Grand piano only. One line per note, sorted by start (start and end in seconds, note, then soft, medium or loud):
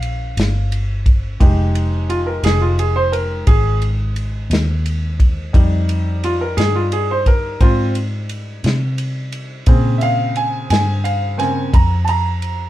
0.00 1.36 C#4 soft
0.00 0.68 F5 medium
1.40 5.50 G#3 soft
1.40 5.50 D#4 soft
1.40 5.50 G4 soft
2.09 2.26 F4 medium
2.27 2.43 A#4 medium
2.45 2.60 G#4 medium
2.61 2.77 F4 medium
2.79 2.95 G#4 medium
2.96 3.12 C5 medium
3.12 3.46 A#4 medium
3.47 3.81 G#4 medium
5.53 9.63 G3 soft
5.53 9.63 D#4 soft
6.24 6.40 F4 medium
6.41 6.57 A#4 medium
6.57 6.73 G#4 medium
6.76 6.91 F4 medium
6.93 7.08 G#4 medium
7.11 7.26 C5 medium
7.27 7.60 A#4 medium
7.61 7.93 C4 medium
7.61 7.95 F4 medium
9.67 11.36 C#3 soft
9.67 11.37 C4 medium
9.67 12.70 G#4 soft
9.98 10.02 E5 soft
10.02 10.36 F5 medium
10.37 10.69 G#5 medium
10.70 11.04 G#5 medium
11.04 11.38 F5 medium
11.37 11.69 C#3 soft
11.37 11.69 A#3 soft
11.37 11.70 C4 soft
11.37 11.73 G#5 medium
11.74 12.07 A#5 medium
12.04 12.09 A5 medium
12.09 12.70 A#5 medium